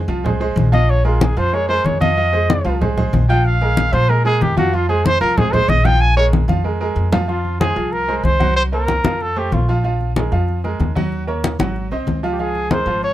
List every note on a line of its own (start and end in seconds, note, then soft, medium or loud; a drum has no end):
0.08 0.53 C2 loud
0.08 0.22 F3 medium
0.08 0.22 F4 medium
0.08 0.22 F5 medium
0.08 high conga soft
0.24 0.38 G#3 medium
0.24 0.38 G#4 medium
0.24 0.38 C5 medium
0.24 high conga soft
0.24 low conga medium
0.40 0.67 G#3 medium
0.40 0.67 G#4 medium
0.40 0.67 C5 medium
0.40 high conga soft
0.56 1.31 A#1 loud
0.56 high conga medium
0.72 0.99 F3 medium
0.72 0.99 F4 loud
0.72 0.91 D#5 loud
0.72 0.99 F5 loud
0.72 high conga medium
0.89 1.06 C#5 loud
0.89 high conga soft
1.04 1.31 G#3 medium
1.04 1.24 F4 medium
1.04 1.31 G#4 medium
1.04 1.31 A#4 medium
1.04 high conga soft
1.21 1.39 G#4 medium
1.21 high conga loud
1.37 1.82 F2 medium
1.37 1.50 F3 medium
1.37 1.50 F4 medium
1.37 1.55 C5 loud
1.37 1.50 F5 medium
1.37 high conga soft
1.53 1.66 G#3 medium
1.53 1.66 G#4 medium
1.53 1.67 A#4 medium
1.53 1.68 C#5 loud
1.53 high conga soft
1.69 1.95 G#3 medium
1.69 1.95 G#4 medium
1.69 1.96 A#4 medium
1.69 1.87 C5 loud
1.69 high conga soft
1.84 2.59 F2 medium
1.84 2.00 C#5 medium
1.84 high conga medium
2.00 2.14 F3 medium
2.00 2.14 F4 loud
2.00 2.77 D#5 loud
2.00 2.14 F5 medium
2.00 high conga medium
2.17 2.30 F3 medium
2.17 2.30 F4 medium
2.17 2.31 F5 medium
2.17 high conga soft
2.32 2.59 G#3 medium
2.32 2.59 G#4 medium
2.32 2.60 C5 medium
2.32 high conga soft
2.50 high conga loud
2.65 3.10 C2 loud
2.65 2.78 F3 medium
2.65 2.78 F4 medium
2.65 2.79 F5 medium
2.65 high conga soft
2.81 2.94 G#3 medium
2.81 2.95 G#4 medium
2.81 2.95 C5 medium
2.81 high conga soft
2.81 low conga medium
2.97 3.23 G#3 medium
2.97 3.24 G#4 medium
2.97 3.24 C5 medium
2.97 high conga soft
2.97 low conga medium
3.13 3.87 A#1 loud
3.13 high conga medium
3.29 3.56 F3 loud
3.29 3.56 F4 medium
3.29 3.56 F5 loud
3.29 3.47 G5 loud
3.45 3.95 F5 loud
3.45 high conga soft
3.61 3.88 G#3 medium
3.61 3.88 G#4 medium
3.61 3.88 A#4 medium
3.61 high conga soft
3.77 high conga loud
3.93 4.37 A#2 loud
3.93 4.06 F3 medium
3.93 4.06 F4 medium
3.93 4.11 C5 loud
3.93 4.06 F5 medium
3.93 high conga soft
4.09 4.22 G#3 medium
4.09 4.22 G#4 medium
4.09 4.25 A#4 loud
4.09 4.23 A#4 medium
4.09 high conga soft
4.25 4.51 G#3 medium
4.25 4.51 G#4 medium
4.25 4.43 G#4 loud
4.25 4.52 A#4 medium
4.25 high conga soft
4.41 5.15 F2 loud
4.41 4.57 G4 medium
4.41 high conga medium
4.57 4.70 F3 loud
4.57 4.70 F4 loud
4.57 4.76 F#4 loud
4.57 4.70 F5 medium
4.57 high conga medium
4.73 4.86 F3 medium
4.73 4.86 F4 medium
4.73 4.88 F4 medium
4.73 4.86 F5 medium
4.73 high conga soft
4.89 5.15 G#3 medium
4.89 5.15 G#4 medium
4.89 5.07 G#4 loud
4.89 5.15 C5 medium
4.89 high conga soft
5.06 5.20 C5 loud
5.06 high conga loud
5.21 5.65 C2 medium
5.21 5.34 F3 medium
5.21 5.34 F4 medium
5.21 5.39 A#4 loud
5.21 5.34 F5 medium
5.21 high conga soft
5.37 5.50 G#3 medium
5.37 5.50 G#4 medium
5.37 5.55 G#4 loud
5.37 5.50 C5 medium
5.37 high conga soft
5.37 low conga medium
5.53 5.79 G#3 medium
5.53 5.79 G#4 medium
5.53 5.70 C5 loud
5.53 5.79 C5 medium
5.53 high conga soft
5.53 low conga medium
5.68 6.43 A#1 loud
5.68 5.87 D#5 loud
5.68 high conga medium
5.85 6.11 F3 loud
5.85 6.11 F4 medium
5.85 6.11 F5 medium
5.85 6.02 G5 loud
5.85 high conga medium
6.01 6.17 G#5 loud
6.01 high conga soft
6.16 6.43 G#3 medium
6.16 6.43 G#4 medium
6.16 6.43 A#4 medium
6.16 6.27 C#5 loud
6.16 high conga soft
6.33 high conga medium
6.48 6.93 F2 loud
6.48 6.61 F3 medium
6.48 6.62 F4 medium
6.48 6.62 F5 medium
6.48 high conga medium
6.64 6.77 G#3 medium
6.64 6.77 G#4 medium
6.64 6.78 A#4 medium
6.80 7.07 G#3 medium
6.80 7.07 G#4 medium
6.80 7.07 A#4 medium
6.96 7.70 F2 loud
7.12 7.26 F3 loud
7.12 7.26 F4 medium
7.12 7.26 F5 medium
7.12 low conga medium
7.28 7.54 F3 medium
7.28 7.58 F4 medium
7.28 7.55 F4 medium
7.28 7.55 F5 medium
7.28 high conga soft
7.45 high conga soft
7.60 7.73 G#3 medium
7.60 7.74 G#4 medium
7.60 7.94 G#4 loud
7.60 7.74 C5 medium
7.60 high conga medium
7.76 8.21 C2 medium
7.76 8.02 F3 medium
7.76 8.03 F4 medium
7.76 8.03 F5 medium
7.92 8.17 A#4 loud
7.92 high conga soft
8.08 8.34 G#3 medium
8.08 8.35 G#4 medium
8.08 8.35 C5 medium
8.08 high conga soft
8.17 8.26 A#4 medium
8.24 8.98 C2 medium
8.24 8.56 C5 loud
8.24 high conga medium
8.39 8.66 F#3 medium
8.39 8.66 F#4 medium
8.39 8.66 F#5 medium
8.39 high conga medium
8.56 8.64 C5 loud
8.56 high conga soft
8.72 8.99 A#3 medium
8.72 8.99 A#4 medium
8.72 9.24 A#4 medium
8.72 8.99 C5 medium
8.72 high conga soft
8.88 high conga medium
9.04 9.49 F2 medium
9.04 9.31 F3 medium
9.04 9.31 F4 medium
9.04 9.31 F5 medium
9.04 high conga medium
9.21 9.40 A4 medium
9.21 high conga soft
9.36 9.62 A3 medium
9.36 9.55 G4 medium
9.36 9.63 A4 medium
9.36 9.63 C5 medium
9.36 high conga soft
9.52 10.26 A#1 loud
9.52 9.77 F4 medium
9.52 high conga medium
9.68 9.82 F3 medium
9.68 9.82 F4 medium
9.68 9.82 F5 medium
9.68 high conga soft
9.84 10.10 F3 medium
9.84 10.11 F4 medium
9.84 10.11 F5 medium
9.84 high conga soft
10.01 high conga soft
10.16 10.29 G#3 medium
10.16 10.29 G#4 medium
10.16 10.30 A#4 medium
10.16 high conga medium
10.32 10.77 F2 medium
10.32 10.58 F3 medium
10.32 10.58 F4 medium
10.32 10.59 F5 medium
10.48 high conga soft
10.64 10.90 G#3 medium
10.64 10.90 G#4 medium
10.64 10.91 A#4 medium
10.64 high conga soft
10.80 11.54 D#2 medium
10.80 high conga medium
10.95 11.22 F#3 medium
10.95 11.22 F#4 medium
10.95 11.22 F#5 medium
10.95 high conga medium
11.12 high conga soft
11.27 11.54 A#3 medium
11.27 11.54 A#4 medium
11.27 11.54 C#5 medium
11.27 high conga soft
11.44 high conga medium
11.59 11.89 G#1 medium
11.59 11.86 F#3 medium
11.59 11.86 F#4 medium
11.59 11.86 F#5 medium
11.59 high conga medium
11.76 high conga soft
11.91 12.06 C2 medium
11.91 12.18 C4 medium
11.91 12.18 C5 medium
11.91 12.18 D#5 medium
11.91 high conga soft
12.07 12.81 C#2 medium
12.07 high conga medium
12.23 12.37 F3 medium
12.23 12.37 F4 medium
12.23 12.37 F5 medium
12.23 high conga soft
12.32 12.41 G4 medium
12.39 12.65 F3 medium
12.39 12.66 F4 medium
12.39 12.73 G#4 loud
12.39 12.66 F5 medium
12.39 high conga soft
12.55 high conga soft
12.71 12.84 G#3 medium
12.71 12.85 G#4 medium
12.71 12.85 A#4 medium
12.71 13.03 C5 loud
12.71 high conga medium
12.86 13.13 G#1 medium
12.86 13.13 F3 medium
12.86 13.13 F4 medium
12.86 13.13 F5 medium
13.03 13.13 C#5 loud
13.03 high conga soft